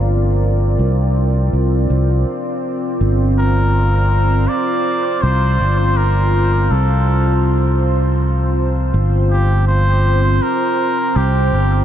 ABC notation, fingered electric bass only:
X:1
M:4/4
L:1/8
Q:"Swing 16ths" 1/4=81
K:Gm
V:1 name="Fingered electric bass" clef=bass
G,,,2 C,,2 C,, C,, z2 | G,,,4 z2 C,, G,,,- | G,,,2 C,,6 | G,,,4 z2 C,, G,,, |]